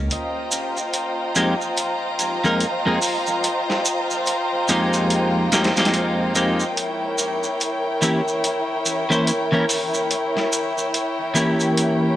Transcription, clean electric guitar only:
1.36 F2 G#3 A#3 C4 D#4 G4
2.44 F2 G#3 A#3 D#4 A#4
2.86 F2 G#3 A#3 C4 D#4 G#4
4.69 F2 G#3 A#3 C4 D#4 G4
5.52 F2 G#3 A#3 C4 D#4 G4
5.77 F2 G#3 A#3 C4 D#4 G4
6.35 F2 G#3 A#3 C4 D#4 G4
8.02 E3 A#3 C#4 E4 G4
9.10 E3 A#3 C#4 E4 C5
9.52 E3 A#3 C#4 E4 A#4
11.35 E3 A#3 C#4 E4 G4

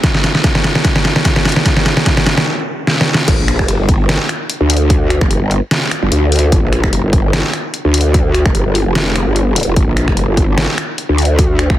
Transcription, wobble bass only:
3.28 G1
3.39 A#1
3.59 F1
3.79 G1
4.61 D2
5.21 F1
5.42 G1
6.02 G1
6.12 D2
6.52 G1
6.63 A#1
6.83 F1
7.04 G1
7.85 D2
8.46 F1
8.66 G1
8.86 F1
9.27 G1
9.67 F1
9.76 G1
9.88 A#1
10.08 F1
10.28 G1
11.09 D2
11.70 F1

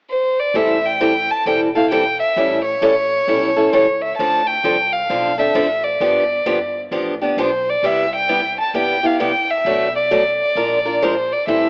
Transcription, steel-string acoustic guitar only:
0.55 E3 G3 C4 E4 A4
1.00 E3 G3 C4 E4 A4
1.46 E3 G3 C4 E4 A4
1.75 C4 E4 A4
1.91 E3 G3 C4 E4 A4
2.37 E3 G3 C#4 E4 A4
2.82 E3 G3 C#4 E4 A4
3.28 E3 G3 C#4 E4 A4
3.56 C#4 E4 A4
3.73 E3 G3 C#4 E4 A4
4.19 D3 F3 C4 D4 A4
4.64 D3 F3 C4 D4 A4
5.10 D3 F3 C4 D4 A4
5.38 C4 D4 A4
5.55 D3 F3 C4 D4 A4
6.00 D3 F3 B3 D4 G4
6.46 D3 F3 B3 D4 G4
6.92 D3 F3 B3 D4 G4
7.21 B3 D4 G4
7.38 D3 F3 B3 D4 G4
7.83 C3 G3 B3 E4 G4
8.29 C3 G3 B3 E4 G4
8.75 C3 G3 B3 E4 G4
9.03 B3 E4 G4
9.20 C3 G3 B3 E4 G4
9.66 B2 F#3 A3 D4 F#4
10.11 B2 F#3 A3 D4 F#4
10.56 F3 G#3 D4 F4 A#4
10.86 D4 F4 A#4
11.02 F3 G#3 D4 F4 A#4
11.48 E3 G3 C4 E4 A4

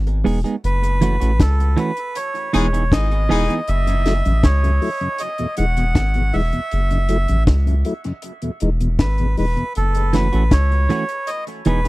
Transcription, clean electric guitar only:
0.24 G#3 B3 D#4 G#4
0.44 G#3 B3 D#4 G#4
1.01 E3 A3 C#4 F#4
1.20 E3 A3 C#4 F#4
1.77 E3 A3 C#4 F#4
2.53 E3 B3 D#4 G#4
2.73 E3 B3 D#4 G#4
3.29 E3 B3 D#4 G#4
3.48 E3 B3 D#4 G#4
10.13 E3 A3 C#4 F#4
10.32 E3 A3 C#4 F#4
10.89 E3 A3 C#4 F#4
11.66 E3 B3 D#4 G#4
11.85 G#4

